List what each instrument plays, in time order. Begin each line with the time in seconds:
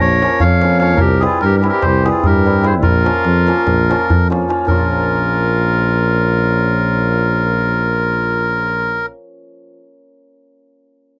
Already playing: hammered dulcimer F3
0.00 tuba A#1, clarinet A#4, melodica C#5
0.22 hammered dulcimer F3 A#3 C#4 F4, darbuka tek
0.40 tuba F2, clarinet C#5, melodica F5, darbuka dum
0.52 darbuka tek
0.62 hammered dulcimer F3 A#3 C#4 F4, darbuka tek
0.70 darbuka tek
0.80 hammered dulcimer F3 A#3 C#4 F4, clarinet C#5, melodica F5, darbuka tek
0.97 tuba C2, melodica A#4, darbuka dum
1.01 clarinet G4
1.11 darbuka tek
1.20 hammered dulcimer E3 G3 C4 E4, melodica G#4, darbuka tek
1.25 clarinet F4
1.41 tuba G2, melodica A#4, darbuka tek
1.45 clarinet G4
1.52 darbuka tek
1.57 clarinet G4, melodica A#4
1.62 hammered dulcimer E3 G3 C4 E4, darbuka tek
1.69 clarinet G4, melodica A#4
1.82 tuba C2, melodica C5, darbuka tek, darbuka dum
1.87 clarinet G4
2.05 hammered dulcimer E3 G3 C4 E4, melodica G#4, darbuka tek
2.12 clarinet F4
2.24 tuba G2, melodica A#4, darbuka dum
2.28 clarinet G4
2.35 darbuka tek
2.45 hammered dulcimer E3 G3 C4 E4
2.55 darbuka tek
2.62 hammered dulcimer E3 G3 C4 E4, clarinet G#4, darbuka tek
2.67 melodica C5
2.83 tuba A#1, clarinet F4, melodica A#4, darbuka dum
2.94 darbuka tek
3.05 hammered dulcimer F3 A#3 C#4 F4, darbuka tek
3.17 darbuka tek
3.25 tuba F2, darbuka tek
3.47 hammered dulcimer F3 A#3 C#4 F4, darbuka tek
3.58 darbuka tek
3.67 tuba A#1, darbuka tek, darbuka dum
3.80 darbuka tek
3.90 hammered dulcimer F3 A#3 C#4 F4, darbuka tek
4.01 darbuka tek
4.10 tuba F2, darbuka dum
4.22 darbuka tek
4.30 hammered dulcimer F3 A#3 C#4 F4, darbuka tek
4.42 darbuka tek
4.48 hammered dulcimer F3 A#3 C#4 F4, darbuka tek
4.59 darbuka tek
4.65 tuba A#1, hammered dulcimer F3 A#3, clarinet F4, melodica A#4, darbuka dum
4.70 hammered dulcimer C#4 F4